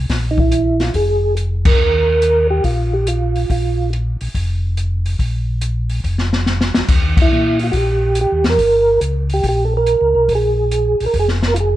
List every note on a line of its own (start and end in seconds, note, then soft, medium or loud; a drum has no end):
0.10 0.91 A#1 medium
0.10 kick soft
0.10 snare soft
0.10 open hi-hat soft
0.31 0.40 D#4 medium
0.38 0.83 E4 medium
0.38 kick medium
0.52 closed hi-hat soft
0.80 0.94 F4 medium
0.80 snare soft
0.80 open hi-hat soft
0.94 1.76 F1 medium
0.94 1.35 G#4 medium
0.94 kick soft
0.94 open hi-hat soft
1.37 closed hi-hat soft
1.65 2.47 A#4 medium
1.65 kick medium
1.65 crash medium
1.80 2.61 D#2 medium
2.22 closed hi-hat soft
2.50 2.64 G4 medium
2.64 3.45 A#1 medium
2.64 2.94 F4 medium
2.64 kick soft
2.64 open hi-hat soft
2.93 3.08 G4 medium
3.07 3.50 F4 medium
3.07 closed hi-hat soft
3.36 open hi-hat soft
3.50 4.17 A#1 medium
3.50 3.90 F4 medium
3.50 kick soft
3.50 open hi-hat soft
3.93 closed hi-hat soft
4.21 4.28 A#1 soft
4.21 open hi-hat soft
4.35 5.16 F1 medium
4.35 kick soft
4.35 open hi-hat soft
4.77 closed hi-hat soft
5.06 open hi-hat soft
5.19 6.00 A#1 medium
5.19 kick soft
5.19 open hi-hat soft
5.61 closed hi-hat soft
5.90 open hi-hat soft
6.04 6.71 F1 medium
6.04 kick soft
6.04 open hi-hat soft
6.18 snare soft
6.33 snare soft
6.46 snare soft
6.61 snare medium
6.74 6.83 F1 soft
6.74 snare medium
6.88 7.29 D#2 medium
6.88 kick medium
6.88 crash medium
7.17 kick medium
7.17 crash medium
7.22 7.59 E4 loud
7.32 7.71 A#2 medium
7.59 open hi-hat soft
7.64 7.67 F4 medium
7.72 8.26 A#1 medium
7.72 7.75 F#4 medium
7.72 kick soft
7.72 open hi-hat soft
7.77 8.19 G4 medium
8.15 closed hi-hat soft
8.21 8.46 G4 medium
8.32 8.45 D#2 medium
8.44 8.58 E2 medium
8.44 snare soft
8.44 open hi-hat soft
8.50 9.00 A#4 loud
8.58 8.98 G1 medium
8.58 kick soft
8.58 open hi-hat soft
9.01 9.41 C#2 medium
9.01 closed hi-hat medium
9.30 open hi-hat soft
9.34 9.46 G4 medium
9.44 9.97 A#1 medium
9.44 kick soft
9.44 open hi-hat soft
9.49 9.64 G4 medium
9.65 9.74 A4 medium
9.77 10.33 A#4 loud
9.86 closed hi-hat soft
10.01 10.14 C#2 medium
10.15 10.28 B1 medium
10.29 10.96 A#1 medium
10.29 kick soft
10.29 open hi-hat soft
10.35 11.05 G#4 medium
10.71 closed hi-hat soft
11.00 11.07 A#1 soft
11.00 open hi-hat soft
11.06 11.17 A#4 medium
11.14 11.77 F1 medium
11.14 kick soft
11.14 open hi-hat soft
11.20 11.31 G#4 medium
11.28 snare soft
11.43 snare soft
11.47 11.54 A#4 medium
11.54 11.58 F4 medium
11.54 closed hi-hat soft
11.60 11.77 G#4 medium